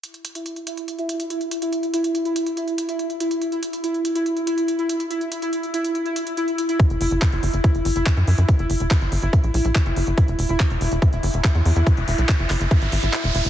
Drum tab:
HH |xxxxxxxxxxxxxxxx|xxxxxxxxxxxxxxxx|xxxxxxxxxxxxxxxx|xxxxxxxxxxxxxxxx|
CP |----------------|----------------|----------------|----------------|
BD |----------------|----------------|----------------|----------------|

HH |xxoxxxoxxxoxxxox|xxoxxxoxxxoxxxox|xxoxxxoxxxoxxxox|xxoxxxoxxxoxxxox|
CP |----x-------x---|----x-------x---|----x-------x---|----x-x-----x---|
BD |o---o---o---o---|o---o---o---o---|o---o---o---o---|o---o---o-------|